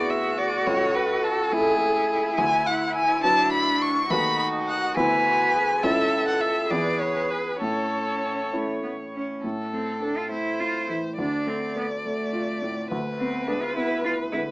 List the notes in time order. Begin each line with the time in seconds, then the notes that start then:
Already playing: D2 B3 E4 F#4 G#4 D5
0.10 E5
0.37 D5
0.66 C#2 A4 C#5
0.95 B4
1.23 A4
1.52 A3 E4 G#4 A4
2.37 D2 E4 G#5
2.66 F#5
2.95 G#5
3.23 F#3 D4 F#4 B4 A5
3.52 B5
3.82 C#6
4.10 D#2 A3 D#4 F#4 B4 B5
4.39 B5
4.67 F#5
4.95 D2 B3 E4 B4 G#5
5.25 F#4
5.54 G#4
5.83 C#2 C#4 E4 A4 E5
6.28 F#5
6.41 E5
6.70 E2 B3 E4 G#4 B4 D5
7.00 C#5
7.30 B4
7.61 A2 C#4 A4 C#5
8.53 A3 C#4 E4 A4
8.83 B3
9.14 C#4
9.44 A2 A4
9.73 A3 C4
10.02 A3 D4 A4
10.17 F4
10.31 A3 E4 C5
10.60 E4 F4
10.89 E3 A3 E4
11.18 D2 D4 D5
11.47 A3 C4
11.76 A3 B3 A4
12.05 A3
12.33 F4
12.62 A2 A3
12.91 D2 B4
13.19 B3 C4
13.48 G#3 D4 G#4
13.62 F4
13.76 B3 E4
14.05 E4 F4
14.32 D3 G#3 E4